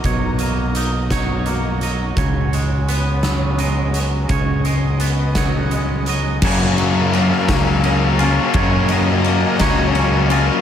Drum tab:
CC |------|------|------|x-----|
RD |------|------|------|-xxxxx|
HH |xxxxxx|xxxxxx|xxxxxx|------|
SD |---o--|---o--|---o--|---o--|
BD |o--o--|o-----|o--o--|o--o--|

CC |------|
RD |xxxxxx|
HH |------|
SD |---o--|
BD |o--o--|